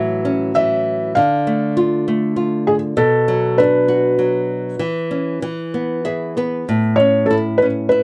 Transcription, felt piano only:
0.00 0.51 E5 medium
0.55 1.18 E5 medium
1.15 1.72 F5 medium
2.67 2.74 G#4 medium
2.97 3.60 A4 medium
3.58 6.01 B4 medium
6.96 7.29 C#5 medium
7.26 7.33 A4 medium
7.58 7.65 B4 medium
7.89 8.03 B4 medium

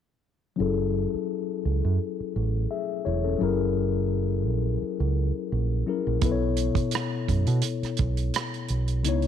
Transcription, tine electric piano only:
0.56 3.00 F#3 medium
0.56 2.65 C#4 medium
0.56 2.66 E4 medium
0.60 2.67 G#4 medium
0.60 2.67 A4 medium
2.71 3.04 G#4 soft
2.71 3.04 E5 soft
3.05 3.23 E4 soft
3.05 3.23 C#5 medium
3.24 3.38 C#4 soft
3.24 3.57 A4 soft
3.38 5.82 F#3 medium
3.38 5.83 C#4 medium
3.38 5.83 E4 medium
3.38 5.84 G#4 medium
3.43 5.85 A#4 medium
5.86 6.22 F#3 soft
5.86 6.22 C#4 soft
5.86 6.21 E4 soft
5.86 6.23 G#4 soft
5.86 6.23 A#4 soft
6.20 8.99 B2 medium
6.20 9.00 B3 medium
6.20 9.01 E4 medium
6.24 9.01 A4 medium
6.24 6.31 B4 medium
6.32 9.05 C#5 medium
9.03 9.27 C#3 medium
9.03 9.27 B3 medium
9.03 9.27 D#4 medium
9.03 9.27 E4 medium
9.09 9.27 C#5 medium

